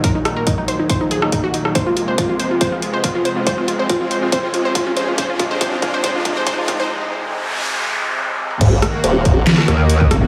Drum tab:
CC |----------------|----------------|----------------|----------------|
HH |x-x-x-x-x-x-x-x-|x-x-x-x-x-x-x-x-|x-x-x-x-x-x-x-x-|x-x-x-x-x-x-x-x-|
CP |----------------|----------------|----------------|----------------|
SD |--r--------r---r|----------------|----------------|----------------|
T1 |----------------|----------------|----------------|----------------|
T2 |----------------|----------------|----------------|----------------|
BD |o---o---o---o---|o---o---o---o---|o---o---o---o---|o-o-o-o-o-o-o-o-|

CC |----------------|x---------------|
HH |----------------|x-x-x-x-x-x-x-x-|
CP |----------------|--------x-------|
SD |----------------|--r-----orr---r-|
T1 |------------oo--|----------------|
T2 |---------------o|----------------|
BD |----------------|o-----o------o--|